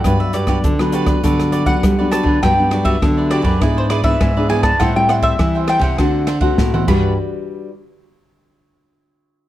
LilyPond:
<<
  \new Staff \with { instrumentName = "Mandolin" } { \time 4/4 \key g \major \tempo 4 = 101 g''16 e''16 d''4 b'4 d''16 fis''8. a''8 | g''8. e''8. d''8. c''16 d''16 e''8. gis''16 a''16 | fis''16 g''16 fis''16 e''8. g''16 fis''4. r16 b''8 | r1 | }
  \new Staff \with { instrumentName = "Cavaquinho" } { \time 4/4 \key g \major <fis' g' b' d''>8 <fis' g' b' d''>16 <fis' g' b' d''>16 r16 <g' b' d''>16 <fis' g' b' d''>16 <g' b' d''>16 <fis' g' b' d''>8 <fis' g' b' d''>16 <g' b' d''>8 <g' b' d''>16 <fis' g' b' d''>16 <g' b' d''>16 | <fis' g' b' d''>8 <fis' g' b' d''>16 <fis' g' b' d''>16 r16 <g' b' d''>16 <fis' g' b' d''>16 <g' b' d''>16 <e' gis' b' d''>8 <e' gis' b' d''>16 <gis' b' d''>8 <gis' b' d''>16 <e' gis' b' d''>16 <gis' b' d''>16 | <a' c'' e'' g''>8 <a' c'' e'' g''>16 <a' c'' e'' g''>16 r16 <c'' e'' g''>16 <a' c'' e'' g''>16 <c'' e'' g''>16 <d' a' c'' fis''>8 <d' a' c'' fis''>16 <a' c'' fis''>8 <a' c'' fis''>16 <fis' g' b' d''>8 | r1 | }
  \new Staff \with { instrumentName = "Nylon-string guitar" } { \time 4/4 \key g \major << { <fis b d'>8 r16 <fis b d'>8 <fis b d'>8. <fis b d'>8. <fis b d'>8 <fis b d'>8. | <fis b d'>16 <fis b d'>16 <fis b d'>8 <fis b d'>8. r16 <e b d'>8. <e b d'>16 <e b d'>16 <e b d'>16 <e b d'>16 r16 | <g c' e'>16 <g c' e'>8. <g c' e'>4 <a c' fis'>8 r16 <a c' fis'>8. <g d' fis' b'>8 | r1 | } \\ { g,4 d4 g,4 d4 | g,4 d4 gis,4 gis,4 | a,4 e4 d4 a,8 r8 | r1 | } >> }
  \new Staff \with { instrumentName = "Nylon-string guitar" } { \clef bass \time 4/4 \key g \major g,16 r16 g,8 d4 d4 g8. d16 | g,4 d8. fis,16 gis,4 gis,4 | a,4 e8. c16 d4 a,8 g,8 | r1 | }
  \new DrumStaff \with { instrumentName = "Drums" } \drummode { \time 4/4 <hh bd ss>8 hh16 <hh bd ss>16 <hh bd>16 ss16 hh16 <hh bd ss>16 <hh bd>16 <hh ss>16 hh16 <hh bd>16 <hh bd ss>8 <hh ss>16 bd16 | <bd cymr ss>8 <cymr ss>16 <bd cymr>16 <bd cymr ss>8 <cymr ss>16 <bd cymr>16 <bd cymr ss>8 <cymr ss>16 <bd cymr>16 <bd cymr ss>8 cymr16 <bd cymr ss>16 | <bd cymr ss>8 <cymr ss>16 <bd cymr>16 <bd cymr ss>8 <cymr ss>16 <bd cymr>16 <bd cymr ss>8 <cymr ss>16 <bd cymr>16 <bd sn>16 tommh16 <cymc bd>8 | r4 r4 r4 r4 | }
>>